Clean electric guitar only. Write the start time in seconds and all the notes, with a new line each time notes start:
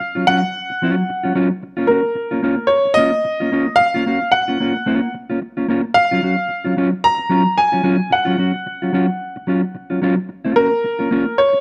0.00 muted clean electric guitar stroke
0.15 F#3 C#4 F4
0.27 F#3 C#4 F4
0.43 muted clean electric guitar stroke
0.70 muted clean electric guitar stroke
0.82 F#3 C#4 F4
0.98 muted clean electric guitar stroke
1.09 muted clean electric guitar stroke
1.23 F#3 C#4 F4
1.35 F#3 C#4 F4
1.51 muted clean electric guitar stroke
1.63 muted clean electric guitar stroke
1.77 A#3 C#4 F4
1.89 A#3 C#4 F#4
2.03 muted clean electric guitar stroke
2.15 muted clean electric guitar stroke
2.31 A#3 C#4 F4
2.43 A#3 C#4 F4
2.58 muted clean electric guitar stroke
2.85 muted clean electric guitar stroke
2.97 A#3 C#4 F4
3.13 muted clean electric guitar stroke
3.25 muted clean electric guitar stroke
3.40 A#3 C#4 F4
3.52 A#3 C#4 F4
3.68 muted clean electric guitar stroke
3.80 muted clean electric guitar stroke
3.94 A#3 C#4 F4
4.06 A#3 C#4 F#4
4.33 muted clean electric guitar stroke
4.48 A#3 C#4 F4
4.60 A#3 C#4 F4
4.76 muted clean electric guitar stroke
4.86 A#3 C#4 F4
5.02 muted clean electric guitar stroke
5.14 muted clean electric guitar stroke
5.30 A#3 C#4 F4
5.42 muted clean electric guitar stroke
5.57 A#3 C#4 F4
5.68 A#3 C#4 F4
5.84 muted clean electric guitar stroke
5.96 muted clean electric guitar stroke
6.11 F#3 C#4 F4
6.22 F#3 C#4 F#4
6.49 muted clean electric guitar stroke
6.64 F#3 C#4 F4
6.77 F#3 C#4 F4
6.92 muted clean electric guitar stroke
7.18 muted clean electric guitar stroke
7.29 F#3 C#4 F4
7.45 muted clean electric guitar stroke
7.58 muted clean electric guitar stroke
7.72 F#3 C#4 F4
7.83 F#3 C#4 F4
7.99 muted clean electric guitar stroke
8.10 muted clean electric guitar stroke
8.25 F#3 C#4 F4
8.38 F#3 C#4 F#4
8.56 muted clean electric guitar stroke
8.66 muted clean electric guitar stroke
8.82 F#3 C#4 F4
8.93 F#3 C#4 F4
9.08 muted clean electric guitar stroke
9.36 muted clean electric guitar stroke
9.47 F#3 C#4 F4
9.64 muted clean electric guitar stroke
9.75 muted clean electric guitar stroke
9.90 F#3 C#4 F4
10.02 F#3 C#4 F4
10.17 muted clean electric guitar stroke
10.29 muted clean electric guitar stroke
10.45 A#3 C#4 F4
10.56 A#3 C#4 F#4
10.71 muted clean electric guitar stroke
10.84 muted clean electric guitar stroke
10.99 A#3 C#4 F4
11.11 A#3 C#4 F4
11.27 muted clean electric guitar stroke
11.53 muted clean electric guitar stroke